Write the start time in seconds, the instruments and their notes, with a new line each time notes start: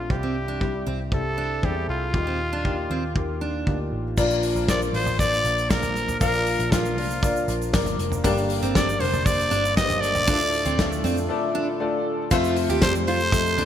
Already playing: grand piano A2 A3 C4 D4 F4 G4, trumpet F4
0.10 picked electric bass C2, grand piano G2 G3 C4 E4 G4, trumpet G4, kick
0.23 steel-string acoustic guitar C4
0.48 steel-string acoustic guitar D4
0.60 grand piano G3 C4 E4 G4, kick
0.87 picked electric bass C2, steel-string acoustic guitar C4
1.12 picked electric bass C2, grand piano G3 C4 E4 G4, trumpet A4, kick
1.38 steel-string acoustic guitar D4
1.62 picked electric bass E2, grand piano G3 C4 E4 G#4, trumpet G4, kick
1.69 grand piano A4
1.88 picked electric bass C2, trumpet F4
2.14 picked electric bass D#2, grand piano A#2 A#3 D#4 F4 G4, kick
2.27 steel-string acoustic guitar C4
2.53 steel-string acoustic guitar D4
2.64 grand piano A#3 D#4 F4 G4, kick
2.90 picked electric bass D#2, steel-string acoustic guitar C4
3.15 picked electric bass D#2, grand piano A#3 D#4 F4 G4, kick
3.41 steel-string acoustic guitar D4
3.66 picked electric bass D2, grand piano A#3 D#4 F4 G4, kick
3.92 picked electric bass A1
4.17 picked electric bass A#1, grand piano A#2 F3 A#3 D4 F4 A#4 D5, tonewheel organ F3 A#3 D4, kick, crash, shaker
4.30 shaker
4.43 hi-hat pedal, open hi-hat, shaker
4.55 picked electric bass A#1, shaker
4.68 grand piano A#3 D4 F4 A#4 C5, trumpet D5, kick, snare, hi-hat pedal, open hi-hat, shaker
4.82 shaker
4.93 picked electric bass A1, grand piano A#3 D4 F4 A#4 D5, trumpet C5, hi-hat pedal, open hi-hat
5.06 floor tom, shaker
5.19 grand piano A#3 D4 F4 A#4 D5, trumpet D5, kick, hi-hat pedal, open hi-hat, shaker
5.33 shaker
5.44 picked electric bass A#1, hi-hat pedal, open hi-hat, shaker
5.58 open hi-hat, shaker
5.70 grand piano A#3 D4 F4 A#4 D5, trumpet A#4, kick, snare, hi-hat pedal, open hi-hat, shaker
5.82 floor tom, hi-hat pedal, shaker
5.96 hi-hat pedal, open hi-hat, shaker
6.08 floor tom, shaker
6.21 picked electric bass A#1, grand piano A#2 F3 A#3 D4 F4 A#4 F5, trumpet A#4, kick, hi-hat pedal, open hi-hat, shaker
6.34 open hi-hat, shaker
6.46 hi-hat pedal, open hi-hat, shaker
6.59 picked electric bass A#1, hi-hat pedal, shaker
6.72 grand piano A#3 D4 F4 A#4 F5, trumpet F4, kick, snare, hi-hat pedal, open hi-hat, shaker
6.85 shaker
6.97 picked electric bass C2, grand piano A#3 D4 F4 A#4 D5, hi-hat pedal, open hi-hat
7.10 shaker
7.22 grand piano A#3 D4 F4 A#4 D5, kick, hi-hat pedal, open hi-hat, shaker
7.36 shaker
7.48 picked electric bass A#1, hi-hat pedal, open hi-hat, shaker
7.61 open hi-hat, shaker
7.73 picked electric bass G1, grand piano A#3 D4 F4 A#4 D5, kick, snare, hi-hat pedal, open hi-hat, shaker
7.86 floor tom, hi-hat pedal, shaker
7.99 picked electric bass F1, hi-hat pedal, open hi-hat, shaker
8.12 floor tom, shaker
8.24 picked electric bass G1, grand piano G2 D3 A#3 D4 G4 A#4 D5, tonewheel organ G3, steel-string acoustic guitar D4, kick, hi-hat pedal, open hi-hat, shaker
8.37 open hi-hat, shaker
8.50 hi-hat pedal, open hi-hat, shaker
8.63 picked electric bass G1, steel-string acoustic guitar C4, hi-hat pedal, shaker
8.75 grand piano A#3 D4 G4 A#4 D5, trumpet D5, kick, snare, hi-hat pedal, open hi-hat, shaker
8.89 shaker
9.00 picked electric bass F1, grand piano A#3 D4 G4 A#4 C5, steel-string acoustic guitar D4, trumpet C5, hi-hat pedal, open hi-hat
9.14 floor tom, shaker
9.26 grand piano A#3 D4 G4 A#4 D5, trumpet D5, kick, hi-hat pedal, open hi-hat, shaker
9.40 shaker
9.51 picked electric bass G1, steel-string acoustic guitar D4, hi-hat pedal, open hi-hat, shaker
9.65 open hi-hat, shaker
9.76 grand piano A#3 D4 G4 A#4 B4, trumpet D#5, kick, snare, hi-hat pedal, open hi-hat, shaker
9.84 grand piano C5
9.89 floor tom, hi-hat pedal, shaker
10.01 trumpet D5, hi-hat pedal, open hi-hat, shaker
10.15 floor tom, shaker
10.27 picked electric bass D2, grand piano A2 A3 D4 F4 A4 D5, tonewheel organ D3 D4 F4 A4, steel-string acoustic guitar D4, kick, hi-hat pedal, open hi-hat, shaker
10.40 open hi-hat, shaker
10.53 hi-hat pedal, open hi-hat, shaker
10.65 picked electric bass D2, steel-string acoustic guitar C4, hi-hat pedal, shaker
10.79 grand piano A3 D4 F4 A4 D5, kick, snare, hi-hat pedal, open hi-hat, shaker
10.92 shaker
11.04 picked electric bass F2, grand piano A3 D4 F4 A4 D5, steel-string acoustic guitar C4, hi-hat pedal, open hi-hat, shaker
11.17 shaker
11.29 grand piano A3 D4 E4 A4 D5
11.35 grand piano F4
11.55 steel-string acoustic guitar D4
11.80 grand piano A3 D4 F4 A4 D5
12.31 picked electric bass F2, grand piano C3 A3 C4 F4 A4 C5, steel-string acoustic guitar F4, kick, crash, shaker
12.44 shaker
12.56 hi-hat pedal, open hi-hat, shaker
12.69 picked electric bass D#2, steel-string acoustic guitar G4, shaker
12.81 picked electric bass F2, grand piano A3 C4 F4 A4 D5, trumpet C5, kick, snare, hi-hat pedal, open hi-hat, shaker
12.95 shaker
13.07 steel-string acoustic guitar F4, trumpet C5, hi-hat pedal, open hi-hat
13.20 shaker
13.32 picked electric bass F2, grand piano A3 C4 F4 A4 D#5, kick, hi-hat pedal, open hi-hat, shaker
13.46 shaker
13.57 steel-string acoustic guitar D4, floor tom, hi-hat pedal, open hi-hat